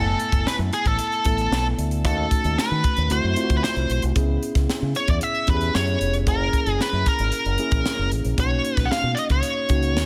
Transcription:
Already playing: F#1 A3 B3 E4 A4 G#5
0.20 closed hi-hat
0.32 F#1, kick, closed hi-hat
0.45 B4, muted fingered electric bass stroke, snare
0.59 F#2, closed hi-hat
0.73 G#4, closed hi-hat
0.85 A1 A4, kick, closed hi-hat
0.99 closed hi-hat
1.12 closed hi-hat
1.25 A1 A3 B3 E4 A4, kick, closed hi-hat
1.38 closed hi-hat
1.51 B1, snare
1.78 D2, closed hi-hat
1.91 closed hi-hat
2.04 D#2 A3 C#4 D#4 F#4 A4, kick, closed hi-hat
2.31 kick, closed hi-hat
2.44 D#2, closed hi-hat
2.58 B4, muted fingered electric bass stroke, snare
2.71 D#3
2.84 kick, closed hi-hat
2.97 D#2, closed hi-hat
3.10 D2 A3 C4 E4 F#4 C5, closed hi-hat
3.24 F#2
3.36 A3 C4 E4 F4, closed hi-hat
3.44 F#4
3.50 D2, kick, closed hi-hat
3.57 B4
3.64 C5, snare
3.76 C2, closed hi-hat
3.90 B1, closed hi-hat
4.02 C2, closed hi-hat
4.15 C#2 B3 C#4 E4 G#4, kick, closed hi-hat
4.43 closed hi-hat
4.55 C#2, kick, snare, closed hi-hat
4.69 muted fingered electric bass stroke, snare
4.82 C#3
4.95 C#5, closed hi-hat
5.08 E2 D5, kick, closed hi-hat
5.21 E5, closed hi-hat
5.35 closed hi-hat
5.47 E2 B3 C#4 E4 G4 B4, kick, closed hi-hat
5.54 G#4
5.61 closed hi-hat
5.75 F#2 C#5, snare
5.87 closed hi-hat
6.01 F1, closed hi-hat
6.13 closed hi-hat
6.26 F#1 A#3 C#4 E4 G#4 A#4, kick, closed hi-hat
6.53 kick, closed hi-hat
6.66 F#1, closed hi-hat
6.79 B4, muted fingered electric bass stroke, snare
6.93 F#2
7.06 A#4, kick, closed hi-hat
7.19 G#1, closed hi-hat
7.32 closed hi-hat
7.45 F#1, closed hi-hat
7.58 A#3 C#4 E4 G#4, closed hi-hat
7.71 A#1, kick, closed hi-hat
7.86 snare
7.99 F#1
8.12 A1, closed hi-hat
8.25 A#1, closed hi-hat
8.38 B1 A#3 C#4 D#4 F#4 C#5, kick, closed hi-hat
8.65 closed hi-hat
8.77 B1, kick, snare, closed hi-hat
8.86 F#5
8.91 F5, muted fingered electric bass stroke, snare
9.03 B2
9.15 D5 D#5, closed hi-hat
9.30 C#2 C#5, kick, closed hi-hat
9.43 closed hi-hat
9.69 C#2 A#3 C#4 D#4 F#4, kick, closed hi-hat
9.83 closed hi-hat
9.95 D#2, snare

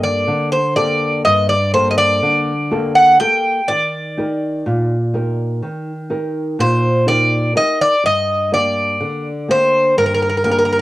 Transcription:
Already playing: G2 A#3 G4 A4
0.03 D5
0.27 D3
0.52 C5
0.76 A#3 G4 A4 D5
1.25 G2 D#5
1.49 D5
1.73 A#3 G4 A4 C5
1.91 D#5
1.98 D5
2.23 D3
2.71 A#3 G4 A4
2.95 F#5
3.20 A#3 G4 A4 G5
3.68 D#3 D5
4.17 D#4 G4 A#4
4.66 A#2
5.14 D#4 G4 A#4
5.62 D#3
6.10 D#4 G4 A#4
6.59 A#2 C5
7.07 D#4 G4 A#4 D5
7.55 D#4 G4 A#4 D#5
7.82 D5
8.04 G2 D#5
8.52 A#3 D4 G4 D5
9.00 D3
9.48 A#3 D4 G4 C5
9.97 G2 A#4
10.06 A#4
10.14 A#4
10.22 A#4
10.29 A#4
10.37 A#4
10.44 A#3 D4 G4 A#4
10.51 A#4
10.58 A#4
10.65 A#4
10.72 A#4

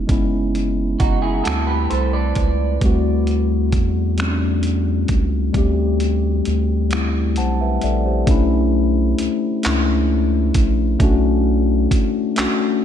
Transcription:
Already playing: G#3 B3 C#4 E4
0.07 F#1 G#3 B3 C#4, kick, closed hi-hat
0.11 E4
0.55 closed hi-hat
1.00 F#1 D#4 F#4, kick, closed hi-hat
1.22 E4 G#4
1.44 D2 G3 A3 C4 F#4 A4, finger snap, closed hi-hat
1.49 D4
1.55 E4
1.67 G4 B4
1.90 C2 A4 C5, closed hi-hat
2.13 B4 D5
2.35 C#2, kick, closed hi-hat
2.81 D2 G3 A3 C4, kick, closed hi-hat
2.85 F#4
3.27 closed hi-hat
3.72 E2, kick, closed hi-hat
4.17 G3 A3 C4, finger snap, closed hi-hat
4.22 C#4
4.28 D4
4.63 closed hi-hat
5.08 C#2, kick, closed hi-hat
5.53 D2 G3 A3 C4, kick, closed hi-hat
5.58 G4
6.00 closed hi-hat
6.45 D2, closed hi-hat
6.89 G3 A3 C4, finger snap, closed hi-hat
6.94 E4
7.36 B1 C5 F#5 A5, closed hi-hat
7.61 B4 E5
7.81 A#1 A4 D5 E5, closed hi-hat
8.06 G4 C5
8.26 B1 A3 C#4 D4, kick, closed hi-hat
8.31 E4
9.19 C#2, closed hi-hat
9.63 C#2 A3 C#4 D4, clap, closed hi-hat
9.68 E4
10.54 A#1, kick, closed hi-hat
10.99 B1 A3 C#4 D4, kick, closed hi-hat
11.04 F#4
11.91 B1, kick, closed hi-hat
12.36 B1 A3 C#4 D4 F#4, clap, closed hi-hat

